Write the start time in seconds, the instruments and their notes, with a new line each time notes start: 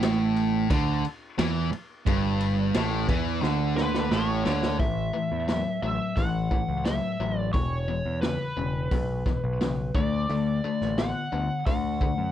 Already playing: picked electric bass A1, overdriven electric guitar A2
0.02 snare, ride
0.36 ride
0.70 picked electric bass D2, overdriven electric guitar D3, kick, ride
1.05 ride
1.38 picked electric bass E2, overdriven electric guitar E3, snare, ride
1.72 muted distorted electric guitar stroke, muted overdriven electric guitar stroke, muted picked electric bass stroke, ride
2.06 picked electric bass G1, overdriven electric guitar G2, kick, ride
2.40 ride
2.74 picked electric bass A1, overdriven electric guitar A2, snare, ride
3.09 picked electric bass E2, overdriven electric guitar E3, kick, ride
3.43 picked electric bass D2, overdriven electric guitar D3, snare
3.76 lead electric guitar B4, snare
3.94 snare
4.11 picked electric bass A1, overdriven electric guitar A2, lead electric guitar C#5, snare
4.45 picked electric bass D2, overdriven electric guitar D3, snare
4.63 snare
4.79 picked electric bass A1, overdriven electric guitar A2 E3, lead electric guitar E5, kick, open hi-hat
5.13 overdriven electric guitar A2 E3
5.32 picked electric bass E2
5.48 overdriven electric guitar A2 F#3, snare, open hi-hat
5.82 picked electric bass A1, overdriven electric guitar A2 F#3, lead electric guitar E5
6.16 picked electric bass A1, overdriven electric guitar A2 E3, lead electric guitar F#5, kick, open hi-hat
6.51 overdriven electric guitar A2 E3, kick
6.69 picked electric bass C#2
6.85 overdriven electric guitar A2 F#3, lead electric guitar E5, snare, open hi-hat
7.20 picked electric bass A1, overdriven electric guitar A2 F#3
7.38 lead electric guitar D5
7.53 picked electric bass E1, overdriven electric guitar E2 B2, lead electric guitar C#5, kick, open hi-hat
7.88 overdriven electric guitar E2 B2
8.05 picked electric bass E2
8.21 overdriven electric guitar E2 C#3, lead electric guitar B4, snare, open hi-hat
8.57 picked electric bass E1, overdriven electric guitar E2 C#3
8.91 picked electric bass B1, overdriven electric guitar E2 B2, kick, open hi-hat
9.26 overdriven electric guitar E2 B2, kick, snare
9.44 picked electric bass B1
9.61 overdriven electric guitar E2 C#3, snare, open hi-hat
9.95 picked electric bass D2, overdriven electric guitar D3 A3, lead electric guitar D5, kick
10.29 picked electric bass D2, overdriven electric guitar D3 A3, open hi-hat
10.64 overdriven electric guitar D3 A3
10.81 picked electric bass A1, snare
10.98 overdriven electric guitar D3 B3, lead electric guitar F#5, snare, open hi-hat
11.32 picked electric bass D2, overdriven electric guitar D3 B3
11.66 picked electric bass D2, overdriven electric guitar D3 A3, lead electric guitar F#5, kick, open hi-hat
12.01 overdriven electric guitar D3 A3, kick
12.18 picked electric bass F#2